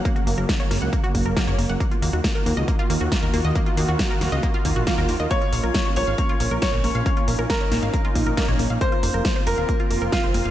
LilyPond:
<<
  \new Staff \with { instrumentName = "Grand piano" } { \time 4/4 \key bes \minor \tempo 4 = 137 r1 | r1 | r1 | des''4. des''4. des''4~ |
des''4 bes'2. | c''4. bes'4. f'4 | }
  \new Staff \with { instrumentName = "Synth pluck" } { \time 4/4 \key bes \minor bes16 ges'16 bes16 bes'16 bes16 des''16 bes16 ges''16 bes16 ges'16 bes16 bes'16 bes16 des''16 bes16 ges''16 | bes16 f'16 bes16 ges'16 bes16 bes'16 bes16 ees''16 bes16 f'16 bes16 ges'16 bes16 bes'16 bes16 ees''16 | bes16 f'16 bes16 ges'16 bes16 bes'16 bes16 ees''16 bes16 f'16 bes16 ges'16 bes16 bes'16 bes16 ees''16 | bes16 f'16 bes16 bes'16 bes16 des''16 bes16 f''16 bes16 f'16 bes16 bes'16 bes16 des''16 bes16 f''16 |
bes16 f'16 bes16 bes'16 bes16 des''16 bes16 f''16 bes16 f'16 bes16 bes'16 bes16 des''16 bes16 f''16 | bes16 f'16 bes16 bes'16 bes16 c''16 bes16 f''16 bes16 f'16 bes16 bes'16 bes16 c''16 bes16 f''16 | }
  \new Staff \with { instrumentName = "Supersaw synth" } { \time 4/4 \key bes \minor << { <ges bes>1 | <ees f' ges'>1~ | <ees f' ges'>1 | des'1 |
ees'1 | <c' f'>1 | } \\ { des1 | r1 | r1 | bes1~ |
bes1~ | bes1 | } >> }
  \new Staff \with { instrumentName = "Analog synth bass" } { \clef bass \time 4/4 \key bes \minor r8 ges,,16 ges,,16 r8 ges,,16 des,16 r8 ges,,16 ges,,16 r16 ges,,16 ges,,16 ges,,16 | r8 ees,16 ees,16 r8 ees,16 des,16 r8 ees,16 ees,16 r16 ees,16 ees,16 ees,16 | r8 ees,16 ees,16 r8 ees,16 des,16 r8 ees,16 bes,,16 r16 ees,16 ees,16 ees,16 | r8 bes,,16 bes,,16 r8 bes,,16 aes,,16 r8 bes,,16 bes,,16 r16 bes,,16 bes,,16 bes,,16 |
r8 bes,,16 bes,,16 r8 bes,,16 aes,,16 r8 bes,,16 bes,,16 r16 bes,,16 bes,,16 bes,,16 | r8 f,,16 f,,16 r8 f,,16 ees,,16 r8 f,,16 f,,16 r16 f,,16 f,,16 f,,16 | }
  \new DrumStaff \with { instrumentName = "Drums" } \drummode { \time 4/4 <hh bd>16 hh16 hho8 <hh bd sn>16 hh16 <hho sn>8 <hh bd>16 hh16 <hho bd>16 hh16 <hh bd sn>16 hh16 hho16 hh16 | <hh bd>16 hh16 hho16 hh16 <hh bd sn>16 hh16 hho16 hh16 <hh bd>16 hh16 hho8 <hh bd sn>16 hh16 hho8 | <hh bd>16 hh16 hho16 hh16 <hh bd sn>16 hh16 <hho sn>16 hh16 <hh bd>16 hh16 <hho bd>16 hh16 <hh bd sn>16 hh16 hho16 hh16 | <hh bd>16 hh16 hho16 hh16 <hh bd sn>16 hh16 hho16 hh16 <hh bd>16 hh16 hho16 hh16 <hh bd sn>16 hh16 hho16 hh16 |
<hh bd>16 hh16 hho16 hh16 <hh bd sn>16 hh16 <hho sn>16 hh16 <hh bd>16 hh16 <hho bd>16 hh16 <hh bd sn>16 hh16 hho16 hh16 | <hh bd>16 hh16 hho16 hh16 <hh bd sn>16 hh16 hho16 hh16 <hh bd>16 hh16 hho16 hh16 <hh bd sn>16 hh16 hho16 hh16 | }
>>